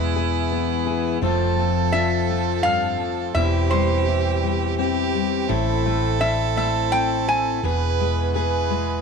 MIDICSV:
0, 0, Header, 1, 6, 480
1, 0, Start_track
1, 0, Tempo, 712589
1, 820, Time_signature, 3, 2, 24, 8
1, 6072, End_track
2, 0, Start_track
2, 0, Title_t, "Resonator guitar played with a steel bar"
2, 0, Program_c, 0, 25
2, 1296, Note_on_c, 0, 76, 108
2, 1752, Note_off_c, 0, 76, 0
2, 1772, Note_on_c, 0, 77, 110
2, 2251, Note_off_c, 0, 77, 0
2, 2254, Note_on_c, 0, 76, 93
2, 2496, Note_on_c, 0, 72, 73
2, 2505, Note_off_c, 0, 76, 0
2, 3432, Note_off_c, 0, 72, 0
2, 4180, Note_on_c, 0, 76, 88
2, 4420, Note_off_c, 0, 76, 0
2, 4428, Note_on_c, 0, 76, 80
2, 4658, Note_off_c, 0, 76, 0
2, 4660, Note_on_c, 0, 79, 109
2, 4904, Note_off_c, 0, 79, 0
2, 4907, Note_on_c, 0, 80, 98
2, 5837, Note_off_c, 0, 80, 0
2, 6072, End_track
3, 0, Start_track
3, 0, Title_t, "Fiddle"
3, 0, Program_c, 1, 110
3, 0, Note_on_c, 1, 64, 98
3, 823, Note_off_c, 1, 64, 0
3, 827, Note_on_c, 1, 69, 96
3, 2262, Note_on_c, 1, 67, 97
3, 2272, Note_off_c, 1, 69, 0
3, 3219, Note_off_c, 1, 67, 0
3, 3223, Note_on_c, 1, 67, 96
3, 3698, Note_on_c, 1, 69, 107
3, 3708, Note_off_c, 1, 67, 0
3, 5145, Note_on_c, 1, 71, 100
3, 5155, Note_off_c, 1, 69, 0
3, 5614, Note_off_c, 1, 71, 0
3, 5618, Note_on_c, 1, 71, 86
3, 6072, Note_off_c, 1, 71, 0
3, 6072, End_track
4, 0, Start_track
4, 0, Title_t, "Harmonium"
4, 0, Program_c, 2, 20
4, 0, Note_on_c, 2, 52, 76
4, 0, Note_on_c, 2, 59, 65
4, 0, Note_on_c, 2, 68, 85
4, 793, Note_off_c, 2, 68, 0
4, 794, Note_off_c, 2, 52, 0
4, 795, Note_off_c, 2, 59, 0
4, 816, Note_on_c, 2, 69, 83
4, 819, Note_on_c, 2, 53, 69
4, 824, Note_on_c, 2, 60, 58
4, 2245, Note_off_c, 2, 69, 0
4, 2246, Note_off_c, 2, 53, 0
4, 2267, Note_on_c, 2, 52, 81
4, 2271, Note_on_c, 2, 67, 75
4, 3690, Note_off_c, 2, 52, 0
4, 3692, Note_off_c, 2, 67, 0
4, 3692, Note_on_c, 2, 57, 66
4, 3695, Note_on_c, 2, 64, 81
4, 5116, Note_off_c, 2, 60, 0
4, 5122, Note_off_c, 2, 57, 0
4, 5123, Note_off_c, 2, 64, 0
4, 5139, Note_on_c, 2, 59, 63
4, 5140, Note_on_c, 2, 52, 74
4, 5140, Note_on_c, 2, 68, 76
4, 6072, Note_off_c, 2, 52, 0
4, 6072, Note_off_c, 2, 59, 0
4, 6072, Note_off_c, 2, 68, 0
4, 6072, End_track
5, 0, Start_track
5, 0, Title_t, "Steel-string acoustic guitar"
5, 0, Program_c, 3, 25
5, 0, Note_on_c, 3, 40, 91
5, 0, Note_on_c, 3, 52, 75
5, 0, Note_on_c, 3, 56, 69
5, 0, Note_on_c, 3, 59, 55
5, 110, Note_on_c, 3, 68, 62
5, 342, Note_off_c, 3, 59, 0
5, 350, Note_on_c, 3, 59, 59
5, 576, Note_off_c, 3, 68, 0
5, 584, Note_on_c, 3, 68, 61
5, 791, Note_off_c, 3, 52, 0
5, 793, Note_off_c, 3, 68, 0
5, 797, Note_off_c, 3, 56, 0
5, 817, Note_off_c, 3, 40, 0
5, 820, Note_on_c, 3, 41, 79
5, 824, Note_on_c, 3, 53, 62
5, 825, Note_off_c, 3, 59, 0
5, 829, Note_on_c, 3, 57, 70
5, 835, Note_on_c, 3, 60, 62
5, 840, Note_on_c, 3, 65, 77
5, 1063, Note_off_c, 3, 57, 0
5, 1071, Note_on_c, 3, 57, 57
5, 1297, Note_off_c, 3, 65, 0
5, 1305, Note_on_c, 3, 65, 73
5, 1539, Note_off_c, 3, 57, 0
5, 1548, Note_on_c, 3, 57, 55
5, 1776, Note_off_c, 3, 41, 0
5, 1778, Note_on_c, 3, 43, 58
5, 2017, Note_off_c, 3, 43, 0
5, 2020, Note_on_c, 3, 41, 66
5, 2234, Note_off_c, 3, 53, 0
5, 2234, Note_off_c, 3, 65, 0
5, 2236, Note_off_c, 3, 57, 0
5, 2258, Note_off_c, 3, 41, 0
5, 2261, Note_on_c, 3, 40, 80
5, 2268, Note_on_c, 3, 64, 74
5, 2503, Note_on_c, 3, 55, 58
5, 2748, Note_off_c, 3, 64, 0
5, 2750, Note_on_c, 3, 64, 68
5, 2973, Note_off_c, 3, 55, 0
5, 2981, Note_on_c, 3, 55, 56
5, 3193, Note_off_c, 3, 60, 0
5, 3224, Note_on_c, 3, 60, 58
5, 3459, Note_off_c, 3, 55, 0
5, 3467, Note_on_c, 3, 55, 62
5, 3674, Note_off_c, 3, 60, 0
5, 3696, Note_off_c, 3, 64, 0
5, 3696, Note_on_c, 3, 45, 87
5, 3699, Note_on_c, 3, 64, 79
5, 3701, Note_off_c, 3, 40, 0
5, 3704, Note_off_c, 3, 55, 0
5, 3946, Note_on_c, 3, 57, 72
5, 4181, Note_off_c, 3, 64, 0
5, 4183, Note_on_c, 3, 64, 66
5, 4420, Note_off_c, 3, 57, 0
5, 4428, Note_on_c, 3, 57, 55
5, 4662, Note_on_c, 3, 60, 50
5, 4899, Note_off_c, 3, 57, 0
5, 4907, Note_on_c, 3, 57, 58
5, 5112, Note_off_c, 3, 60, 0
5, 5115, Note_off_c, 3, 57, 0
5, 5138, Note_off_c, 3, 45, 0
5, 5142, Note_off_c, 3, 64, 0
5, 5149, Note_on_c, 3, 40, 81
5, 5154, Note_on_c, 3, 68, 81
5, 5391, Note_on_c, 3, 56, 66
5, 5621, Note_off_c, 3, 68, 0
5, 5629, Note_on_c, 3, 68, 69
5, 5856, Note_off_c, 3, 56, 0
5, 5864, Note_on_c, 3, 56, 54
5, 6072, Note_off_c, 3, 40, 0
5, 6072, Note_off_c, 3, 56, 0
5, 6072, Note_off_c, 3, 68, 0
5, 6072, End_track
6, 0, Start_track
6, 0, Title_t, "Fingered electric bass"
6, 0, Program_c, 4, 33
6, 0, Note_on_c, 4, 28, 84
6, 795, Note_off_c, 4, 28, 0
6, 823, Note_on_c, 4, 29, 72
6, 2236, Note_off_c, 4, 29, 0
6, 2257, Note_on_c, 4, 28, 71
6, 3672, Note_off_c, 4, 28, 0
6, 3700, Note_on_c, 4, 33, 76
6, 5113, Note_off_c, 4, 33, 0
6, 5140, Note_on_c, 4, 28, 67
6, 6072, Note_off_c, 4, 28, 0
6, 6072, End_track
0, 0, End_of_file